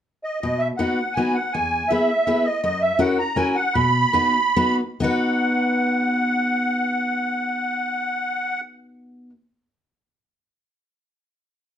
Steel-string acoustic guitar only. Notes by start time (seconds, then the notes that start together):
0.43 B2
0.79 B3 D#4 F#4 B4
1.17 B3 D#4 F#4 B4
1.55 E2
1.90 B3 E4 G#4 B4
2.27 B3 E4 G#4 B4
2.64 F#2
2.99 C#4 E4 F#4 A#4
3.36 C#4 E4 F#4 A#4
3.75 B2
4.13 B3 D#4 F#4 B4
4.56 B3 D#4 F#4 B4
5.00 B3 D#4 F#4 B4